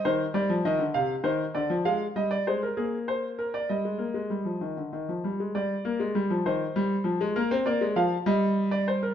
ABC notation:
X:1
M:6/8
L:1/16
Q:3/8=66
K:Eb
V:1 name="Grand piano"
c2 d2 e2 f2 c2 d2 | f2 e d c B A2 c2 B d | e8- e2 z2 | d6 c6 |
B2 d2 f2 e3 d c B |]
V:2 name="Grand piano" clef=bass
E,2 G, F, E, D, C,2 E,2 D, F, | A,2 G,2 A,2 B,6 | G, A, B, A, G, F, E, D, E, F, G, A, | G,2 B, A, G, F, E,2 G,2 F, A, |
B, C B, A, F,2 G,6 |]